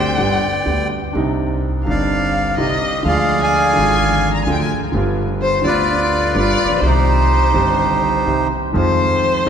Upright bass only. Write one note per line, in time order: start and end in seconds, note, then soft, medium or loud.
0.00 0.14 D2 medium
0.18 0.38 G1 medium
0.66 0.86 D2 medium
1.15 1.83 C2 medium
1.87 2.54 G1 medium
2.58 2.78 C2 medium
3.05 3.72 D2 medium
3.77 4.43 G#1 medium
4.46 4.66 D2 medium
4.93 5.61 G1 medium
5.64 6.32 D2 medium
6.35 6.55 G1 medium
6.64 6.69 A1 soft
6.70 6.75 A#1 soft
6.75 6.81 B1 medium
6.82 7.50 C2 medium
7.54 8.23 G1 medium
8.27 8.47 C2 medium
8.75 9.44 F2 medium